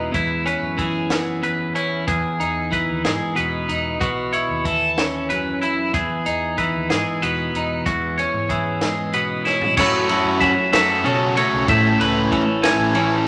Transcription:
Already playing: E2 B2 E3 G#3 D#4 B4
0.12 E2 E4, kick, closed hi-hat
0.46 C#4 B4, closed hi-hat
0.62 F#2
0.78 E3 G#4, kick, closed hi-hat
1.10 B3, snare, closed hi-hat
1.42 E2 B4, closed hi-hat
1.75 C#4 E4, closed hi-hat
2.07 E2 G#4, kick, closed hi-hat
2.40 E2 D#4, closed hi-hat
2.71 E3 B4, kick, closed hi-hat
2.89 D#2
3.04 G#2 G#3 G#4, snare, closed hi-hat
3.35 E2 B2 B4, closed hi-hat
3.68 E2 D#4, closed hi-hat
4.00 B1 B2 F#4, kick, closed hi-hat
4.33 E4 C#5, closed hi-hat
4.49 D#2
4.65 E3 A4, kick, closed hi-hat
4.97 C#4, snare, closed hi-hat
5.30 F#2 B4, closed hi-hat
5.62 E4, closed hi-hat
5.94 E2 G#4, kick, closed hi-hat
6.26 E2 D#4, closed hi-hat
6.58 E3 B4, kick, closed hi-hat
6.74 D#2
6.90 G#2 G#3 G#4, snare, closed hi-hat
7.22 E2 B2 B4, closed hi-hat
7.53 E2 D#4, closed hi-hat
7.86 E2 F#4, kick, closed hi-hat
8.18 C#4 C#5, closed hi-hat
8.33 G#2
8.49 E3 G#4, kick, closed hi-hat
8.81 G#3, snare, closed hi-hat
9.13 B2 B4, closed hi-hat
9.45 C#4 E4, snare
9.61 floor tom
9.77 F#2 F#3 A3 C#4 E4 F#4 A4 C#5, kick, crash
10.09 F#3 C#4 E4 F#4 A4, ride
10.24 F#2
10.40 F#3 C#4 E5, kick, ride
10.72 F#2 F#3 A3 C#4 F#4 A4 E5, snare, ride
11.03 B2 C#3 F#3 C#4 F#4 A4, ride
11.36 F#3 A3 C#4 F#4 A4 C#5, ride
11.52 B1
11.68 A1 A2 A3 C#4 E4 A4 E5, kick, ride
11.98 C#2 A3 C#4 E4 A4 B4, ride
12.31 A1 E3 C#4 A4, kick, ride
12.63 A3 C#4 E4 A4 G#5, snare, ride
12.77 A1
12.95 E3 A3 C#4 E4 A4, ride

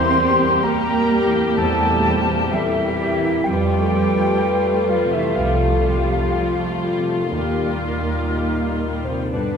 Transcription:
Already playing: E2 G3 A#3 C4 E4 G4 C5 C6
0.01 A#3
0.19 G3 G4
0.32 C4
0.42 A#3
0.63 G3 A#3 G4 A#4 A#5
0.88 A#3
0.95 A#3
1.11 G3 G4
1.26 E3
1.36 A#3
1.57 E2 G3 A3 A4 C5 A5
1.82 A#3
1.89 A#2
2.06 G3 C5
2.20 C4
2.29 A#3
2.51 E3 G3 E4 G4 A4 E5
2.77 A#3
2.85 A#3
3.00 G3 G4
3.16 E3
3.23 A#3
3.44 F2 G3 G5
3.48 F2 G3 F4 G4 B4
3.72 A3
3.80 A3
3.95 G3
4.10 F4
4.19 A3
4.41 G3 G4
4.65 A3
4.74 A3
4.89 F3 G3 F4 F5
5.05 C3
5.12 A3 E4 E5
5.16 E3
5.35 C2 F3 G3 A3 F4 F5
5.42 A4
5.63 A3
5.68 C3
5.87 G3 G4
6.00 F4
6.10 A3
6.32 G3 G4
6.38 F4
6.59 A3
6.65 A3
6.83 G3
6.98 C3
7.07 A3
7.32 D#2 A#2 D#3 G3 A#3 G4 A#4
7.57 G3
7.65 G3
7.82 G3 D#4
7.98 F4
8.06 G3
8.30 G3 G4
8.57 G3
8.64 G3
8.83 G3
8.99 A#2
9.05 C3 C4 C5
9.09 G3
9.32 G2 B2 D3 G3 B3 D4 B4
9.37 D4

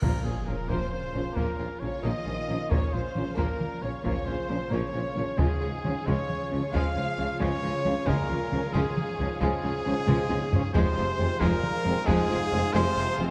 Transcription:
0.01 A#1 A#2 F3 A#3 C#4 F4 A#4 F5, taiko, sub drop
0.24 A#1 G#2 A#2 F3 C#4 F4 G#4
0.46 A#1 A#2 F3 A#3 C#4 A#4
0.67 A#1 A#2 C3 F3 A#3 C5, taiko
0.92 C#3 C5
1.14 A#1 A#2 F3 A#3 C#4
1.35 A#1 A#2 F3 A#3 A#4, taiko
1.57 A#1 A#2 F3 C#4 F4
1.80 A#1 A#2 C#3 F3 A#3 C#4 C#5
2.03 A#1 A#2 D#3 F3 A#3 D#5
2.25 A#1 A#2 F3 C#4 F4
2.48 A#1 A#2 F3 A#3 C#4
2.70 A#1 A#2 C#3 F3 A#3 C#5, taiko
2.92 A#1 A#2 C#3 F3 C#4 F4 C5
3.14 A#1 A#2 F3 A#3 C#4, taiko mid
3.37 A#1 A#2 F3 A#3 A#4, taiko
3.61 taiko mid
3.81 A#1 A#2 C#3 F3 A#3 C#4 C#5
4.04 A#1 A#2 C#3 F3 A#3 C#5, taiko
4.25 A#1 A#2 C#3 F3 C#4 F4 C5
4.48 A#1 A#2 F3 A#3 C#4
4.70 A#1 A#2 C#3 F3 A#3 C#5
4.93 A#1 A#2 F3 C#4 F4
5.14 A#1 A#2 F3 A#3 C#4, taiko mid
5.38 C#2 G#2 C#3 F3 G#3 F4 G#4 C#5 F5, taiko
5.61 C#2 C#3 F3 C#4 F4
5.83 C#2 C#3 F3 G#3 C#4, taiko mid
6.06 C#2 C#3 F3 G#3 C#5, taiko
6.30 taiko mid
6.51 C#2 C#3 F3 G#3 C#4
6.72 C#2 C#3 F3 G#3 F5, taiko
6.96 C#2 C#3 F3 C#4 F4
7.18 C#2 C#3 F3 G#3 C#4
7.40 C#2 C#3 F3 G#3 C#5
7.62 C#2 C#3 F3 C#4 F4
7.84 C#2 C#3 F3 G#3 C#4, taiko mid
8.05 C#2 A#2 C#3 F3 G#3 A#4, taiko
8.28 C#2 C#3 F3 C#4 F4
8.50 C#2 C#3 F3 G#3 C#4, taiko mid
8.74 C#2 G#2 C#3 F3 G#3 G#4, taiko
8.97 taiko mid
9.18 C#2 C#3 F3 G#3 C#4
9.40 C#2 G#2 C#3 F3 G#3 G#4, taiko
9.63 C#2 C#3 F3 C#4 F4
9.85 C#2 C#3 F3 G#3 C#4
10.07 C#2 C#3 F3 G#3, taiko low-mid
10.29 C#2 C#3 F3 C#4 F4, taiko high
10.52 C#2 C#3 F3 G#3 C#4, taiko low
10.74 F1 F2 C3 F3 G#3 F4 G#4 C5 F5, taiko
10.95 F1 F2 F3 G#3 C4 F4
11.18 F1 F2 F3 G#3 C4, taiko mid
11.40 F1 F2 A#2 F3 G#3 A#4, taiko
11.63 taiko mid
11.84 F1 F2 F3 G#3 C4
12.05 F1 F2 G#2 F3 G#3 G#4, taiko
12.29 F1 F2 F3 G#3 C4 F4
12.51 F1 F2 F3 G#3 C4
12.74 F1 F2 C3 F3 G#3 C5
12.96 F1 F2 F3 G#3 C4 F4
13.17 F1 F2 F3 G#3 C4, taiko mid

